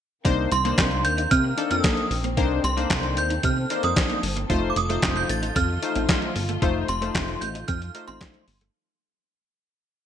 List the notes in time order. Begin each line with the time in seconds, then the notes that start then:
0.25 C2 D#3 A#3 C4 D4 D#4 C5, kick, closed hi-hat
0.52 C2 C6, muted clean electric guitar stroke, closed hi-hat
0.65 A#3 D4 D#4 C5, closed hi-hat
0.78 C2 C4, kick, snare, clap, closed hi-hat
0.91 muted clean electric guitar stroke, closed hi-hat
1.05 D#2 G6, closed hi-hat
1.18 D#4, closed hi-hat
1.31 C3 C4 F6, kick, closed hi-hat
1.44 muted clean electric guitar stroke
1.57 A#3 D4 D#4 A4, closed hi-hat
1.71 F2 C4 D#6, closed hi-hat
1.84 A#3, kick, snare, clap, closed hi-hat
1.97 closed hi-hat
2.11 A#1, muted clean electric guitar stroke, open hi-hat
2.24 A#3, closed hi-hat
2.37 C2 A#3 C4 D4 D#4 A4 C5, kick, closed hi-hat
2.64 C2 C6, muted clean electric guitar stroke, closed hi-hat
2.77 A#3 D4 D#4 C5, closed hi-hat
2.90 C2 C4, kick, snare, clap, closed hi-hat
3.03 muted clean electric guitar stroke, closed hi-hat
3.17 D#2 G6, closed hi-hat
3.30 D#4, closed hi-hat
3.43 C3 C4 F6, kick, closed hi-hat
3.57 muted clean electric guitar stroke
3.70 A#3 D4 D#4 C5, closed hi-hat
3.83 F2 C4 D#6, closed hi-hat
3.96 kick, snare, clap, closed hi-hat
4.10 A#3, closed hi-hat
4.23 G1, muted clean electric guitar stroke, open hi-hat
4.36 A#3, closed hi-hat
4.49 F1 D#3 A3 D#4 F4 C5, kick, closed hi-hat
4.70 D6
4.76 F1 D#6, muted clean electric guitar stroke, closed hi-hat
4.89 A3 D#4 F4 C5, closed hi-hat
5.02 F1 C4, kick, snare, clap, closed hi-hat
5.16 G6, muted clean electric guitar stroke, closed hi-hat
5.29 A1 A6, closed hi-hat
5.43 D#4, closed hi-hat
5.56 F2 C4 F6, kick, closed hi-hat
5.69 muted clean electric guitar stroke
5.82 A3 D#4 F4 C5, closed hi-hat
5.96 A1 C4, closed hi-hat
6.09 A3, kick, snare, clap, closed hi-hat
6.22 closed hi-hat
6.36 G1, muted clean electric guitar stroke, open hi-hat
6.49 A3, closed hi-hat
6.62 F1 A3 D#4 F4 C5, kick, closed hi-hat
6.88 F1 C6, muted clean electric guitar stroke, closed hi-hat
7.01 A3 D#4 F4 C5, closed hi-hat
7.15 F1 C4, kick, snare, clap, closed hi-hat
7.28 muted clean electric guitar stroke, closed hi-hat
7.41 A1 G6, closed hi-hat
7.55 D#4, closed hi-hat
7.68 F2 C4 F6, kick, closed hi-hat
7.82 muted clean electric guitar stroke, closed hi-hat
7.94 A3 D#4 F4 C5, closed hi-hat
8.08 A1 C4 C6, closed hi-hat
8.21 kick, snare, clap, closed hi-hat
8.34 A3, closed hi-hat
8.48 G1, muted clean electric guitar stroke, open hi-hat
8.61 A3, closed hi-hat